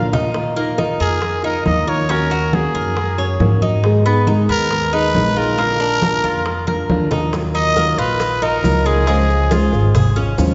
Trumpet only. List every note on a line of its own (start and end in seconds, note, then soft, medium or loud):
1.01 1.41 G#4 medium
1.45 1.65 A#4 medium
1.66 1.90 D#5 medium
1.89 2.13 C#5 medium
2.11 2.55 A#4 medium
2.54 3.63 G#4 medium
4.51 4.96 A#4 loud
4.94 5.39 B4 loud
5.38 6.90 A#4 loud
7.55 8.00 D#5 loud
7.99 8.44 B4 medium
8.42 8.87 A#4 medium
8.86 10.17 G#4 medium